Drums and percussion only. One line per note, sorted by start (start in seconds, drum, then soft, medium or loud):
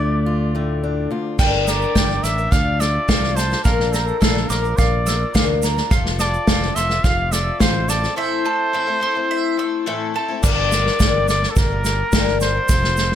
1.39 kick loud
1.39 snare soft
1.39 crash loud
1.39 shaker medium
1.67 snare soft
1.67 shaker medium
1.82 shaker soft
1.96 kick medium
1.96 snare loud
1.96 shaker medium
2.09 snare soft
2.24 snare soft
2.24 shaker medium
2.38 shaker soft
2.52 kick loud
2.52 snare soft
2.52 shaker medium
2.81 snare soft
2.81 shaker medium
3.09 kick medium
3.09 snare loud
3.09 shaker medium
3.23 snare soft
3.37 snare soft
3.37 shaker medium
3.51 snare soft
3.51 shaker soft
3.64 kick loud
3.64 snare soft
3.64 shaker medium
3.80 snare soft
3.93 snare soft
3.93 shaker medium
4.08 shaker soft
4.21 kick medium
4.21 snare loud
4.21 shaker medium
4.37 snare soft
4.50 snare soft
4.50 shaker medium
4.64 shaker soft
4.78 kick loud
4.78 snare soft
4.78 shaker medium
5.07 snare soft
5.07 shaker medium
5.35 kick medium
5.35 snare loud
5.35 shaker medium
5.62 snare soft
5.62 shaker medium
5.77 snare soft
5.77 shaker soft
5.91 kick loud
5.91 snare soft
5.91 shaker medium
6.05 snare soft
6.19 snare soft
6.19 shaker medium
6.34 shaker soft
6.47 kick medium
6.47 snare loud
6.47 shaker medium
6.62 snare soft
6.76 snare soft
6.76 shaker medium
6.90 snare soft
6.90 shaker soft
7.04 kick loud
7.04 snare soft
7.04 shaker medium
7.32 snare soft
7.32 shaker medium
7.60 kick medium
7.60 snare loud
7.60 shaker medium
7.89 snare soft
7.89 shaker medium
8.03 snare soft
8.03 shaker soft
10.43 kick loud
10.43 snare soft
10.43 crash loud
10.43 shaker medium
10.72 snare soft
10.72 shaker medium
10.86 snare soft
11.00 kick medium
11.00 snare loud
11.00 shaker medium
11.28 snare soft
11.28 shaker medium
11.43 snare soft
11.56 kick loud
11.56 snare soft
11.56 shaker loud
11.85 snare soft
11.85 shaker medium
12.12 kick medium
12.12 snare loud
12.12 shaker medium
12.27 snare soft
12.41 snare soft
12.41 shaker medium
12.69 kick loud
12.69 snare soft
12.69 shaker loud
12.84 snare soft
12.97 snare soft
12.97 shaker medium